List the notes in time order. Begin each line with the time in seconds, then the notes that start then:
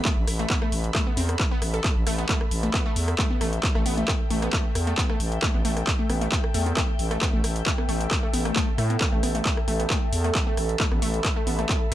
Already playing: A4 E5 B5
0.05 A3, kick, clap, closed hi-hat
0.17 A1
0.27 A1, cross-stick, open hi-hat
0.39 A3, closed hi-hat
0.50 B3, kick, clap, closed hi-hat
0.62 A3, cross-stick
0.72 A1, open hi-hat
0.84 closed hi-hat
0.95 A3, kick, cross-stick, clap, closed hi-hat
1.07 B3
1.17 E2 C4, open hi-hat
1.29 cross-stick, closed hi-hat
1.39 kick, clap, closed hi-hat
1.51 B3
1.62 A1, cross-stick, open hi-hat
1.74 A4, closed hi-hat
1.84 kick, clap, closed hi-hat
1.96 A1
2.07 A1 A3, cross-stick, open hi-hat
2.18 B3
2.29 A3, kick, clap, closed hi-hat
2.41 cross-stick
2.51 A1, open hi-hat
2.63 A3, closed hi-hat
2.74 B3, kick, cross-stick, clap, closed hi-hat
2.86 A3
2.96 E2, open hi-hat
3.08 G5, cross-stick, closed hi-hat
3.19 A3, kick, clap, closed hi-hat
3.30 B3
3.41 A1 A3, cross-stick, open hi-hat
3.53 closed hi-hat
3.63 kick, clap, closed hi-hat
3.75 A1 A3, cross-stick
3.86 A1 B3, open hi-hat
3.98 A3, closed hi-hat
4.08 kick, cross-stick, clap, closed hi-hat
4.30 A1 A3, open hi-hat
4.42 B3, cross-stick, closed hi-hat
4.53 A3, kick, clap, closed hi-hat
4.75 E2, cross-stick, open hi-hat
4.87 A3, closed hi-hat
4.98 B3, kick, clap, closed hi-hat
5.09 A3, cross-stick
5.20 A1, open hi-hat
5.32 closed hi-hat
5.42 A3, kick, cross-stick, clap, closed hi-hat
5.54 A1 B3
5.65 A1 A3, open hi-hat
5.77 cross-stick, closed hi-hat
5.87 kick, clap, closed hi-hat
5.99 A3
6.10 A1 B3, cross-stick, open hi-hat
6.21 A3, closed hi-hat
6.32 kick, clap, closed hi-hat
6.44 cross-stick
6.54 E2 A3, open hi-hat
6.66 B3, closed hi-hat
6.77 A3, kick, cross-stick, clap, closed hi-hat
6.99 A1, open hi-hat
7.11 A3, cross-stick, closed hi-hat
7.22 B3, kick, clap, closed hi-hat
7.33 A1 A3
7.44 A1, cross-stick, open hi-hat
7.56 closed hi-hat
7.66 A3, kick, clap, closed hi-hat
7.78 B3, cross-stick
7.89 A1 A3, open hi-hat
8.01 closed hi-hat
8.11 kick, cross-stick, clap, closed hi-hat, swell
8.23 A3
8.33 A1 B3, open hi-hat
8.45 A3, cross-stick, closed hi-hat
8.56 kick, clap, closed hi-hat
8.78 A2 A3, cross-stick, open hi-hat
8.90 B3, closed hi-hat
9.01 kick, clap, closed hi-hat
9.13 A1 A3
9.23 A1 B3, cross-stick, open hi-hat
9.35 A3, closed hi-hat
9.45 kick, clap, closed hi-hat
9.57 cross-stick
9.68 A1 A3, open hi-hat
9.80 B3, closed hi-hat
9.90 A3, kick, cross-stick, clap, closed hi-hat
10.13 E2, open hi-hat
10.24 A3 B5, cross-stick, closed hi-hat
10.35 B3, kick, clap, closed hi-hat
10.47 A3
10.57 A1, cross-stick, open hi-hat
10.69 closed hi-hat
10.80 A3, kick, clap, closed hi-hat
10.92 A1 B3, cross-stick
11.02 A1 A3, open hi-hat
11.14 closed hi-hat
11.25 kick, cross-stick, clap, closed hi-hat
11.36 A3
11.47 A1 B3, open hi-hat
11.59 A3, cross-stick, closed hi-hat
11.69 kick, clap, closed hi-hat